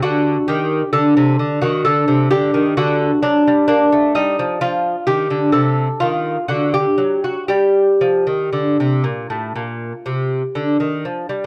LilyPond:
<<
  \new Staff \with { instrumentName = "Lute" } { \time 4/4 \key g \minor \tempo 4 = 64 fis'8 g'8 a'8. fis'16 a'8 g'8 fis'8 d'8 | d'8 ees'8 f'8 g'8 a'8 f'8 fis'16 g'8 fis'16 | g'2.~ g'8 r8 | }
  \new Staff \with { instrumentName = "Lute" } { \clef bass \time 4/4 \key g \minor d8 ees8 d16 c16 d16 ees16 d16 c16 d16 ees16 d8 fis16 g16 | bes16 a16 g16 f16 f8 ees16 d16 c8 ees8 d8 fis8 | g8 f16 ees16 d16 c16 bes,16 a,16 bes,8 c8 d16 ees16 f16 g16 | }
>>